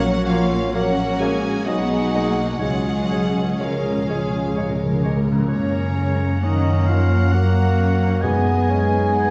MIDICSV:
0, 0, Header, 1, 13, 480
1, 0, Start_track
1, 0, Key_signature, 6, "major"
1, 0, Tempo, 907716
1, 880, Tempo, 963082
1, 1356, Time_signature, 3, 2, 24, 8
1, 2800, Tempo, 907716
1, 4803, End_track
2, 0, Start_track
2, 0, Title_t, "Violin section"
2, 0, Program_c, 0, 48
2, 0, Note_on_c, 0, 78, 109
2, 145, Note_off_c, 0, 78, 0
2, 149, Note_on_c, 0, 77, 100
2, 387, Note_on_c, 0, 78, 100
2, 389, Note_off_c, 0, 77, 0
2, 627, Note_off_c, 0, 78, 0
2, 636, Note_on_c, 0, 80, 93
2, 881, Note_off_c, 0, 80, 0
2, 882, Note_on_c, 0, 78, 100
2, 1346, Note_off_c, 0, 78, 0
2, 1352, Note_on_c, 0, 78, 96
2, 1833, Note_off_c, 0, 78, 0
2, 1840, Note_on_c, 0, 77, 75
2, 2561, Note_off_c, 0, 77, 0
2, 2800, Note_on_c, 0, 82, 62
2, 3266, Note_off_c, 0, 82, 0
2, 3291, Note_on_c, 0, 82, 66
2, 4218, Note_off_c, 0, 82, 0
2, 4227, Note_on_c, 0, 80, 61
2, 4704, Note_off_c, 0, 80, 0
2, 4718, Note_on_c, 0, 78, 68
2, 4803, Note_off_c, 0, 78, 0
2, 4803, End_track
3, 0, Start_track
3, 0, Title_t, "Flute"
3, 0, Program_c, 1, 73
3, 0, Note_on_c, 1, 73, 90
3, 156, Note_off_c, 1, 73, 0
3, 158, Note_on_c, 1, 73, 90
3, 389, Note_off_c, 1, 73, 0
3, 391, Note_on_c, 1, 73, 90
3, 642, Note_on_c, 1, 77, 78
3, 650, Note_off_c, 1, 73, 0
3, 882, Note_on_c, 1, 75, 86
3, 889, Note_off_c, 1, 77, 0
3, 1349, Note_off_c, 1, 75, 0
3, 1352, Note_on_c, 1, 75, 83
3, 1842, Note_on_c, 1, 73, 64
3, 1850, Note_off_c, 1, 75, 0
3, 2562, Note_off_c, 1, 73, 0
3, 2798, Note_on_c, 1, 73, 71
3, 3282, Note_on_c, 1, 75, 67
3, 3290, Note_off_c, 1, 73, 0
3, 3525, Note_off_c, 1, 75, 0
3, 3528, Note_on_c, 1, 77, 68
3, 3767, Note_on_c, 1, 78, 73
3, 3775, Note_off_c, 1, 77, 0
3, 4233, Note_off_c, 1, 78, 0
3, 4236, Note_on_c, 1, 80, 81
3, 4803, Note_off_c, 1, 80, 0
3, 4803, End_track
4, 0, Start_track
4, 0, Title_t, "Oboe"
4, 0, Program_c, 2, 68
4, 154, Note_on_c, 2, 73, 64
4, 238, Note_off_c, 2, 73, 0
4, 391, Note_on_c, 2, 73, 62
4, 475, Note_off_c, 2, 73, 0
4, 632, Note_on_c, 2, 73, 62
4, 717, Note_off_c, 2, 73, 0
4, 877, Note_on_c, 2, 75, 71
4, 957, Note_off_c, 2, 75, 0
4, 1109, Note_on_c, 2, 75, 60
4, 1189, Note_off_c, 2, 75, 0
4, 1342, Note_on_c, 2, 73, 70
4, 1422, Note_off_c, 2, 73, 0
4, 1590, Note_on_c, 2, 73, 57
4, 1670, Note_off_c, 2, 73, 0
4, 1844, Note_on_c, 2, 73, 55
4, 1924, Note_off_c, 2, 73, 0
4, 2082, Note_on_c, 2, 73, 52
4, 2161, Note_off_c, 2, 73, 0
4, 2324, Note_on_c, 2, 73, 59
4, 2404, Note_off_c, 2, 73, 0
4, 2559, Note_on_c, 2, 73, 53
4, 2639, Note_off_c, 2, 73, 0
4, 2785, Note_on_c, 2, 73, 76
4, 3283, Note_on_c, 2, 75, 71
4, 3291, Note_off_c, 2, 73, 0
4, 3509, Note_on_c, 2, 77, 70
4, 3517, Note_off_c, 2, 75, 0
4, 3754, Note_on_c, 2, 78, 84
4, 3762, Note_off_c, 2, 77, 0
4, 4226, Note_on_c, 2, 80, 87
4, 4234, Note_off_c, 2, 78, 0
4, 4803, Note_off_c, 2, 80, 0
4, 4803, End_track
5, 0, Start_track
5, 0, Title_t, "Violin section"
5, 0, Program_c, 3, 48
5, 0, Note_on_c, 3, 66, 76
5, 390, Note_off_c, 3, 66, 0
5, 395, Note_on_c, 3, 70, 74
5, 396, Note_on_c, 3, 66, 75
5, 873, Note_off_c, 3, 66, 0
5, 881, Note_on_c, 3, 68, 73
5, 882, Note_off_c, 3, 70, 0
5, 884, Note_on_c, 3, 63, 70
5, 1350, Note_off_c, 3, 68, 0
5, 1354, Note_on_c, 3, 65, 61
5, 1356, Note_on_c, 3, 68, 70
5, 1358, Note_off_c, 3, 63, 0
5, 1788, Note_off_c, 3, 68, 0
5, 1796, Note_off_c, 3, 65, 0
5, 1849, Note_on_c, 3, 70, 76
5, 2072, Note_off_c, 3, 70, 0
5, 2086, Note_on_c, 3, 68, 65
5, 2325, Note_off_c, 3, 68, 0
5, 2327, Note_on_c, 3, 70, 69
5, 2791, Note_off_c, 3, 70, 0
5, 2797, Note_on_c, 3, 73, 60
5, 3264, Note_off_c, 3, 73, 0
5, 3293, Note_on_c, 3, 78, 65
5, 4234, Note_on_c, 3, 75, 59
5, 4238, Note_off_c, 3, 78, 0
5, 4708, Note_off_c, 3, 75, 0
5, 4716, Note_on_c, 3, 75, 60
5, 4803, Note_off_c, 3, 75, 0
5, 4803, End_track
6, 0, Start_track
6, 0, Title_t, "Trumpet section"
6, 0, Program_c, 4, 61
6, 0, Note_on_c, 4, 73, 78
6, 371, Note_off_c, 4, 73, 0
6, 393, Note_on_c, 4, 73, 76
6, 871, Note_off_c, 4, 73, 0
6, 884, Note_on_c, 4, 68, 74
6, 1274, Note_off_c, 4, 68, 0
6, 1359, Note_on_c, 4, 68, 69
6, 1837, Note_off_c, 4, 68, 0
6, 1846, Note_on_c, 4, 68, 74
6, 2619, Note_off_c, 4, 68, 0
6, 4803, End_track
7, 0, Start_track
7, 0, Title_t, "Clarinet"
7, 0, Program_c, 5, 71
7, 0, Note_on_c, 5, 66, 99
7, 153, Note_on_c, 5, 65, 91
7, 161, Note_off_c, 5, 66, 0
7, 393, Note_on_c, 5, 66, 88
7, 400, Note_off_c, 5, 65, 0
7, 633, Note_on_c, 5, 68, 88
7, 641, Note_off_c, 5, 66, 0
7, 882, Note_on_c, 5, 66, 95
7, 889, Note_off_c, 5, 68, 0
7, 1352, Note_off_c, 5, 66, 0
7, 1355, Note_on_c, 5, 66, 86
7, 1835, Note_off_c, 5, 66, 0
7, 1842, Note_on_c, 5, 65, 55
7, 2547, Note_off_c, 5, 65, 0
7, 2799, Note_on_c, 5, 61, 85
7, 3291, Note_on_c, 5, 63, 81
7, 3299, Note_off_c, 5, 61, 0
7, 3527, Note_on_c, 5, 65, 82
7, 3535, Note_off_c, 5, 63, 0
7, 3763, Note_off_c, 5, 65, 0
7, 3766, Note_on_c, 5, 66, 96
7, 4238, Note_on_c, 5, 68, 97
7, 4246, Note_off_c, 5, 66, 0
7, 4803, Note_off_c, 5, 68, 0
7, 4803, End_track
8, 0, Start_track
8, 0, Title_t, "French horn section"
8, 0, Program_c, 6, 60
8, 0, Note_on_c, 6, 58, 84
8, 0, Note_on_c, 6, 61, 82
8, 371, Note_off_c, 6, 58, 0
8, 373, Note_off_c, 6, 61, 0
8, 389, Note_on_c, 6, 58, 80
8, 389, Note_on_c, 6, 61, 84
8, 870, Note_off_c, 6, 58, 0
8, 870, Note_off_c, 6, 61, 0
8, 876, Note_on_c, 6, 63, 74
8, 877, Note_on_c, 6, 56, 77
8, 1269, Note_off_c, 6, 56, 0
8, 1269, Note_off_c, 6, 63, 0
8, 1354, Note_on_c, 6, 56, 63
8, 1354, Note_on_c, 6, 61, 65
8, 1834, Note_off_c, 6, 56, 0
8, 1834, Note_off_c, 6, 61, 0
8, 1846, Note_on_c, 6, 56, 76
8, 1850, Note_on_c, 6, 61, 75
8, 2619, Note_off_c, 6, 56, 0
8, 2621, Note_off_c, 6, 61, 0
8, 2805, Note_on_c, 6, 61, 61
8, 2806, Note_on_c, 6, 58, 72
8, 4217, Note_off_c, 6, 58, 0
8, 4217, Note_off_c, 6, 61, 0
8, 4238, Note_on_c, 6, 63, 68
8, 4240, Note_on_c, 6, 59, 63
8, 4803, Note_off_c, 6, 59, 0
8, 4803, Note_off_c, 6, 63, 0
8, 4803, End_track
9, 0, Start_track
9, 0, Title_t, "Viola section"
9, 0, Program_c, 7, 48
9, 0, Note_on_c, 7, 58, 84
9, 0, Note_on_c, 7, 61, 79
9, 383, Note_off_c, 7, 58, 0
9, 394, Note_off_c, 7, 61, 0
9, 400, Note_on_c, 7, 61, 83
9, 884, Note_off_c, 7, 61, 0
9, 884, Note_on_c, 7, 59, 83
9, 886, Note_on_c, 7, 63, 79
9, 1117, Note_off_c, 7, 59, 0
9, 1122, Note_on_c, 7, 58, 79
9, 1359, Note_off_c, 7, 63, 0
9, 1360, Note_off_c, 7, 58, 0
9, 1362, Note_on_c, 7, 61, 73
9, 1364, Note_on_c, 7, 56, 74
9, 2680, Note_off_c, 7, 56, 0
9, 2699, Note_off_c, 7, 61, 0
9, 2803, Note_on_c, 7, 58, 60
9, 3030, Note_off_c, 7, 58, 0
9, 3048, Note_on_c, 7, 56, 60
9, 3289, Note_off_c, 7, 56, 0
9, 3290, Note_on_c, 7, 58, 71
9, 3757, Note_off_c, 7, 58, 0
9, 3768, Note_on_c, 7, 58, 69
9, 3997, Note_off_c, 7, 58, 0
9, 4004, Note_on_c, 7, 61, 71
9, 4237, Note_off_c, 7, 61, 0
9, 4239, Note_on_c, 7, 59, 62
9, 4714, Note_off_c, 7, 59, 0
9, 4720, Note_on_c, 7, 59, 68
9, 4803, Note_off_c, 7, 59, 0
9, 4803, End_track
10, 0, Start_track
10, 0, Title_t, "Bassoon"
10, 0, Program_c, 8, 70
10, 160, Note_on_c, 8, 58, 63
10, 244, Note_off_c, 8, 58, 0
10, 397, Note_on_c, 8, 58, 72
10, 482, Note_off_c, 8, 58, 0
10, 642, Note_on_c, 8, 58, 62
10, 727, Note_off_c, 8, 58, 0
10, 889, Note_on_c, 8, 56, 68
10, 969, Note_off_c, 8, 56, 0
10, 1123, Note_on_c, 8, 56, 62
10, 1203, Note_off_c, 8, 56, 0
10, 1357, Note_on_c, 8, 56, 60
10, 1437, Note_off_c, 8, 56, 0
10, 1609, Note_on_c, 8, 56, 59
10, 1689, Note_off_c, 8, 56, 0
10, 1849, Note_on_c, 8, 56, 54
10, 1929, Note_off_c, 8, 56, 0
10, 2094, Note_on_c, 8, 56, 53
10, 2174, Note_off_c, 8, 56, 0
10, 2330, Note_on_c, 8, 56, 58
10, 2409, Note_off_c, 8, 56, 0
10, 2570, Note_on_c, 8, 56, 53
10, 2649, Note_off_c, 8, 56, 0
10, 3286, Note_on_c, 8, 61, 73
10, 3765, Note_on_c, 8, 58, 73
10, 3773, Note_off_c, 8, 61, 0
10, 4232, Note_off_c, 8, 58, 0
10, 4235, Note_on_c, 8, 59, 68
10, 4482, Note_on_c, 8, 61, 73
10, 4490, Note_off_c, 8, 59, 0
10, 4714, Note_on_c, 8, 59, 74
10, 4722, Note_off_c, 8, 61, 0
10, 4803, Note_off_c, 8, 59, 0
10, 4803, End_track
11, 0, Start_track
11, 0, Title_t, "Cello section"
11, 0, Program_c, 10, 48
11, 0, Note_on_c, 10, 54, 90
11, 151, Note_off_c, 10, 54, 0
11, 154, Note_on_c, 10, 53, 89
11, 387, Note_on_c, 10, 54, 79
11, 391, Note_off_c, 10, 53, 0
11, 627, Note_off_c, 10, 54, 0
11, 631, Note_on_c, 10, 56, 80
11, 877, Note_on_c, 10, 54, 76
11, 879, Note_off_c, 10, 56, 0
11, 1349, Note_off_c, 10, 54, 0
11, 1355, Note_on_c, 10, 54, 82
11, 1835, Note_off_c, 10, 54, 0
11, 1840, Note_on_c, 10, 53, 58
11, 2547, Note_off_c, 10, 53, 0
11, 2797, Note_on_c, 10, 49, 73
11, 3264, Note_off_c, 10, 49, 0
11, 3283, Note_on_c, 10, 51, 70
11, 3522, Note_on_c, 10, 53, 70
11, 3525, Note_off_c, 10, 51, 0
11, 3762, Note_off_c, 10, 53, 0
11, 3767, Note_on_c, 10, 54, 74
11, 4236, Note_off_c, 10, 54, 0
11, 4236, Note_on_c, 10, 56, 78
11, 4803, Note_off_c, 10, 56, 0
11, 4803, End_track
12, 0, Start_track
12, 0, Title_t, "Timpani"
12, 0, Program_c, 11, 47
12, 1400, Note_on_c, 11, 49, 35
12, 1434, Note_off_c, 11, 49, 0
12, 1440, Note_on_c, 11, 49, 37
12, 1475, Note_off_c, 11, 49, 0
12, 1481, Note_on_c, 11, 49, 40
12, 1513, Note_off_c, 11, 49, 0
12, 1559, Note_on_c, 11, 49, 40
12, 1592, Note_off_c, 11, 49, 0
12, 1598, Note_on_c, 11, 49, 45
12, 1633, Note_off_c, 11, 49, 0
12, 1639, Note_on_c, 11, 49, 45
12, 1676, Note_off_c, 11, 49, 0
12, 1683, Note_on_c, 11, 49, 46
12, 1716, Note_off_c, 11, 49, 0
12, 1760, Note_on_c, 11, 49, 52
12, 1796, Note_off_c, 11, 49, 0
12, 1802, Note_on_c, 11, 49, 49
12, 1837, Note_off_c, 11, 49, 0
12, 1843, Note_on_c, 11, 49, 51
12, 1874, Note_off_c, 11, 49, 0
12, 1880, Note_on_c, 11, 49, 56
12, 1912, Note_off_c, 11, 49, 0
12, 1918, Note_on_c, 11, 49, 61
12, 1952, Note_off_c, 11, 49, 0
12, 1958, Note_on_c, 11, 49, 57
12, 1993, Note_off_c, 11, 49, 0
12, 1999, Note_on_c, 11, 49, 59
12, 2029, Note_off_c, 11, 49, 0
12, 2035, Note_on_c, 11, 49, 63
12, 2075, Note_off_c, 11, 49, 0
12, 2080, Note_on_c, 11, 49, 60
12, 2111, Note_off_c, 11, 49, 0
12, 2117, Note_on_c, 11, 49, 65
12, 2150, Note_off_c, 11, 49, 0
12, 2156, Note_on_c, 11, 49, 63
12, 2185, Note_off_c, 11, 49, 0
12, 2191, Note_on_c, 11, 49, 66
12, 2229, Note_off_c, 11, 49, 0
12, 2235, Note_on_c, 11, 49, 65
12, 2268, Note_off_c, 11, 49, 0
12, 2274, Note_on_c, 11, 49, 73
12, 2304, Note_off_c, 11, 49, 0
12, 2310, Note_on_c, 11, 49, 76
12, 2341, Note_off_c, 11, 49, 0
12, 2347, Note_on_c, 11, 49, 69
12, 2386, Note_off_c, 11, 49, 0
12, 2392, Note_on_c, 11, 49, 81
12, 2426, Note_off_c, 11, 49, 0
12, 2432, Note_on_c, 11, 49, 73
12, 2464, Note_off_c, 11, 49, 0
12, 2470, Note_on_c, 11, 49, 77
12, 2499, Note_off_c, 11, 49, 0
12, 2505, Note_on_c, 11, 49, 82
12, 2542, Note_off_c, 11, 49, 0
12, 2548, Note_on_c, 11, 49, 85
12, 2585, Note_off_c, 11, 49, 0
12, 2591, Note_on_c, 11, 49, 95
12, 2621, Note_off_c, 11, 49, 0
12, 2627, Note_on_c, 11, 49, 91
12, 2658, Note_off_c, 11, 49, 0
12, 2664, Note_on_c, 11, 49, 92
12, 2695, Note_off_c, 11, 49, 0
12, 2701, Note_on_c, 11, 49, 107
12, 2736, Note_off_c, 11, 49, 0
12, 2742, Note_on_c, 11, 49, 111
12, 2780, Note_off_c, 11, 49, 0
12, 4237, Note_on_c, 11, 42, 81
12, 4803, Note_off_c, 11, 42, 0
12, 4803, End_track
13, 0, Start_track
13, 0, Title_t, "Double bass section"
13, 0, Program_c, 12, 48
13, 0, Note_on_c, 12, 34, 84
13, 862, Note_off_c, 12, 34, 0
13, 881, Note_on_c, 12, 35, 74
13, 1347, Note_off_c, 12, 35, 0
13, 1359, Note_on_c, 12, 37, 78
13, 2678, Note_off_c, 12, 37, 0
13, 2798, Note_on_c, 12, 42, 75
13, 4213, Note_off_c, 12, 42, 0
13, 4236, Note_on_c, 12, 42, 75
13, 4803, Note_off_c, 12, 42, 0
13, 4803, End_track
0, 0, End_of_file